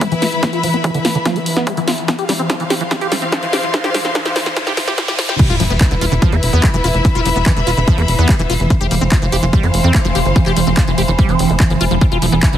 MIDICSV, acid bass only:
0, 0, Header, 1, 2, 480
1, 0, Start_track
1, 0, Tempo, 413793
1, 495, Time_signature, 4, 2, 24, 8
1, 14592, End_track
2, 0, Start_track
2, 0, Title_t, "Acid bass"
2, 0, Program_c, 0, 38
2, 15, Note_on_c, 0, 55, 97
2, 85, Note_off_c, 0, 55, 0
2, 135, Note_on_c, 0, 52, 102
2, 163, Note_off_c, 0, 52, 0
2, 256, Note_on_c, 0, 65, 76
2, 302, Note_off_c, 0, 65, 0
2, 496, Note_on_c, 0, 52, 84
2, 524, Note_off_c, 0, 52, 0
2, 616, Note_on_c, 0, 65, 76
2, 685, Note_off_c, 0, 65, 0
2, 736, Note_on_c, 0, 53, 72
2, 782, Note_off_c, 0, 53, 0
2, 856, Note_on_c, 0, 59, 78
2, 884, Note_off_c, 0, 59, 0
2, 976, Note_on_c, 0, 52, 83
2, 1045, Note_off_c, 0, 52, 0
2, 1096, Note_on_c, 0, 50, 73
2, 1142, Note_off_c, 0, 50, 0
2, 1216, Note_on_c, 0, 65, 76
2, 1262, Note_off_c, 0, 65, 0
2, 1336, Note_on_c, 0, 50, 77
2, 1364, Note_off_c, 0, 50, 0
2, 1456, Note_on_c, 0, 53, 88
2, 1576, Note_on_c, 0, 59, 78
2, 1593, Note_off_c, 0, 53, 0
2, 1622, Note_off_c, 0, 59, 0
2, 1816, Note_on_c, 0, 59, 77
2, 1936, Note_on_c, 0, 55, 93
2, 1953, Note_off_c, 0, 59, 0
2, 2006, Note_off_c, 0, 55, 0
2, 2056, Note_on_c, 0, 52, 104
2, 2084, Note_off_c, 0, 52, 0
2, 2176, Note_on_c, 0, 65, 77
2, 2222, Note_off_c, 0, 65, 0
2, 2416, Note_on_c, 0, 53, 74
2, 2444, Note_off_c, 0, 53, 0
2, 2536, Note_on_c, 0, 67, 74
2, 2605, Note_off_c, 0, 67, 0
2, 2656, Note_on_c, 0, 55, 68
2, 2702, Note_off_c, 0, 55, 0
2, 2775, Note_on_c, 0, 60, 72
2, 2803, Note_off_c, 0, 60, 0
2, 2896, Note_on_c, 0, 53, 78
2, 2965, Note_off_c, 0, 53, 0
2, 3016, Note_on_c, 0, 52, 71
2, 3062, Note_off_c, 0, 52, 0
2, 3136, Note_on_c, 0, 67, 74
2, 3182, Note_off_c, 0, 67, 0
2, 3255, Note_on_c, 0, 52, 70
2, 3283, Note_off_c, 0, 52, 0
2, 3375, Note_on_c, 0, 53, 81
2, 3403, Note_off_c, 0, 53, 0
2, 3496, Note_on_c, 0, 67, 74
2, 3565, Note_off_c, 0, 67, 0
2, 3616, Note_on_c, 0, 55, 76
2, 3662, Note_off_c, 0, 55, 0
2, 3736, Note_on_c, 0, 60, 75
2, 3764, Note_off_c, 0, 60, 0
2, 3856, Note_on_c, 0, 53, 74
2, 3926, Note_off_c, 0, 53, 0
2, 3976, Note_on_c, 0, 52, 72
2, 4022, Note_off_c, 0, 52, 0
2, 4095, Note_on_c, 0, 67, 72
2, 4142, Note_off_c, 0, 67, 0
2, 4215, Note_on_c, 0, 52, 76
2, 4243, Note_off_c, 0, 52, 0
2, 4336, Note_on_c, 0, 53, 81
2, 4363, Note_off_c, 0, 53, 0
2, 4456, Note_on_c, 0, 67, 80
2, 4525, Note_off_c, 0, 67, 0
2, 4576, Note_on_c, 0, 55, 73
2, 4622, Note_off_c, 0, 55, 0
2, 4696, Note_on_c, 0, 60, 77
2, 4724, Note_off_c, 0, 60, 0
2, 4816, Note_on_c, 0, 53, 87
2, 4844, Note_off_c, 0, 53, 0
2, 4936, Note_on_c, 0, 67, 76
2, 5005, Note_off_c, 0, 67, 0
2, 5056, Note_on_c, 0, 55, 77
2, 5102, Note_off_c, 0, 55, 0
2, 5176, Note_on_c, 0, 60, 77
2, 5204, Note_off_c, 0, 60, 0
2, 5296, Note_on_c, 0, 53, 89
2, 5324, Note_off_c, 0, 53, 0
2, 5415, Note_on_c, 0, 67, 79
2, 5485, Note_off_c, 0, 67, 0
2, 5536, Note_on_c, 0, 53, 87
2, 5564, Note_off_c, 0, 53, 0
2, 5656, Note_on_c, 0, 67, 82
2, 5725, Note_off_c, 0, 67, 0
2, 5776, Note_on_c, 0, 53, 83
2, 5804, Note_off_c, 0, 53, 0
2, 5896, Note_on_c, 0, 67, 78
2, 5966, Note_off_c, 0, 67, 0
2, 6016, Note_on_c, 0, 53, 85
2, 6044, Note_off_c, 0, 53, 0
2, 6136, Note_on_c, 0, 67, 80
2, 6206, Note_off_c, 0, 67, 0
2, 6256, Note_on_c, 0, 52, 79
2, 6284, Note_off_c, 0, 52, 0
2, 6376, Note_on_c, 0, 65, 81
2, 6446, Note_off_c, 0, 65, 0
2, 6496, Note_on_c, 0, 53, 78
2, 6542, Note_off_c, 0, 53, 0
2, 6616, Note_on_c, 0, 59, 78
2, 6644, Note_off_c, 0, 59, 0
2, 6736, Note_on_c, 0, 52, 87
2, 6806, Note_off_c, 0, 52, 0
2, 6856, Note_on_c, 0, 50, 75
2, 6902, Note_off_c, 0, 50, 0
2, 6976, Note_on_c, 0, 65, 80
2, 7022, Note_off_c, 0, 65, 0
2, 7096, Note_on_c, 0, 50, 76
2, 7124, Note_off_c, 0, 50, 0
2, 7216, Note_on_c, 0, 53, 87
2, 7336, Note_on_c, 0, 59, 78
2, 7354, Note_off_c, 0, 53, 0
2, 7382, Note_off_c, 0, 59, 0
2, 7576, Note_on_c, 0, 59, 80
2, 7696, Note_on_c, 0, 55, 98
2, 7714, Note_off_c, 0, 59, 0
2, 7766, Note_off_c, 0, 55, 0
2, 7816, Note_on_c, 0, 52, 107
2, 7844, Note_off_c, 0, 52, 0
2, 7936, Note_on_c, 0, 65, 73
2, 7983, Note_off_c, 0, 65, 0
2, 8176, Note_on_c, 0, 52, 84
2, 8204, Note_off_c, 0, 52, 0
2, 8296, Note_on_c, 0, 65, 79
2, 8366, Note_off_c, 0, 65, 0
2, 8416, Note_on_c, 0, 53, 74
2, 8462, Note_off_c, 0, 53, 0
2, 8536, Note_on_c, 0, 59, 76
2, 8564, Note_off_c, 0, 59, 0
2, 8656, Note_on_c, 0, 52, 89
2, 8725, Note_off_c, 0, 52, 0
2, 8775, Note_on_c, 0, 50, 76
2, 8822, Note_off_c, 0, 50, 0
2, 8896, Note_on_c, 0, 65, 79
2, 8942, Note_off_c, 0, 65, 0
2, 9016, Note_on_c, 0, 50, 80
2, 9044, Note_off_c, 0, 50, 0
2, 9135, Note_on_c, 0, 53, 86
2, 9256, Note_on_c, 0, 59, 79
2, 9273, Note_off_c, 0, 53, 0
2, 9302, Note_off_c, 0, 59, 0
2, 9496, Note_on_c, 0, 59, 77
2, 9616, Note_on_c, 0, 55, 103
2, 9633, Note_off_c, 0, 59, 0
2, 9685, Note_off_c, 0, 55, 0
2, 9736, Note_on_c, 0, 52, 104
2, 9764, Note_off_c, 0, 52, 0
2, 9856, Note_on_c, 0, 65, 80
2, 9902, Note_off_c, 0, 65, 0
2, 10096, Note_on_c, 0, 53, 82
2, 10124, Note_off_c, 0, 53, 0
2, 10216, Note_on_c, 0, 67, 76
2, 10286, Note_off_c, 0, 67, 0
2, 10336, Note_on_c, 0, 55, 77
2, 10382, Note_off_c, 0, 55, 0
2, 10456, Note_on_c, 0, 60, 77
2, 10484, Note_off_c, 0, 60, 0
2, 10576, Note_on_c, 0, 53, 86
2, 10646, Note_off_c, 0, 53, 0
2, 10696, Note_on_c, 0, 52, 74
2, 10742, Note_off_c, 0, 52, 0
2, 10816, Note_on_c, 0, 67, 77
2, 10862, Note_off_c, 0, 67, 0
2, 10936, Note_on_c, 0, 52, 74
2, 10964, Note_off_c, 0, 52, 0
2, 11055, Note_on_c, 0, 55, 85
2, 11176, Note_on_c, 0, 60, 82
2, 11193, Note_off_c, 0, 55, 0
2, 11222, Note_off_c, 0, 60, 0
2, 11416, Note_on_c, 0, 60, 80
2, 11536, Note_on_c, 0, 57, 99
2, 11553, Note_off_c, 0, 60, 0
2, 11605, Note_off_c, 0, 57, 0
2, 11656, Note_on_c, 0, 53, 100
2, 11684, Note_off_c, 0, 53, 0
2, 11776, Note_on_c, 0, 67, 79
2, 11822, Note_off_c, 0, 67, 0
2, 12016, Note_on_c, 0, 53, 82
2, 12044, Note_off_c, 0, 53, 0
2, 12136, Note_on_c, 0, 67, 78
2, 12206, Note_off_c, 0, 67, 0
2, 12256, Note_on_c, 0, 55, 76
2, 12302, Note_off_c, 0, 55, 0
2, 12376, Note_on_c, 0, 60, 77
2, 12404, Note_off_c, 0, 60, 0
2, 12496, Note_on_c, 0, 53, 82
2, 12566, Note_off_c, 0, 53, 0
2, 12616, Note_on_c, 0, 52, 77
2, 12662, Note_off_c, 0, 52, 0
2, 12736, Note_on_c, 0, 67, 83
2, 12782, Note_off_c, 0, 67, 0
2, 12856, Note_on_c, 0, 52, 77
2, 12884, Note_off_c, 0, 52, 0
2, 12976, Note_on_c, 0, 55, 91
2, 13096, Note_on_c, 0, 60, 80
2, 13113, Note_off_c, 0, 55, 0
2, 13336, Note_on_c, 0, 53, 79
2, 13353, Note_off_c, 0, 60, 0
2, 13364, Note_off_c, 0, 53, 0
2, 13456, Note_on_c, 0, 53, 80
2, 13502, Note_off_c, 0, 53, 0
2, 13576, Note_on_c, 0, 53, 77
2, 13604, Note_off_c, 0, 53, 0
2, 13696, Note_on_c, 0, 65, 100
2, 13742, Note_off_c, 0, 65, 0
2, 13816, Note_on_c, 0, 53, 81
2, 13862, Note_off_c, 0, 53, 0
2, 13936, Note_on_c, 0, 52, 80
2, 13964, Note_off_c, 0, 52, 0
2, 14056, Note_on_c, 0, 65, 82
2, 14126, Note_off_c, 0, 65, 0
2, 14176, Note_on_c, 0, 53, 77
2, 14222, Note_off_c, 0, 53, 0
2, 14296, Note_on_c, 0, 59, 78
2, 14324, Note_off_c, 0, 59, 0
2, 14416, Note_on_c, 0, 52, 84
2, 14485, Note_off_c, 0, 52, 0
2, 14536, Note_on_c, 0, 50, 75
2, 14582, Note_off_c, 0, 50, 0
2, 14592, End_track
0, 0, End_of_file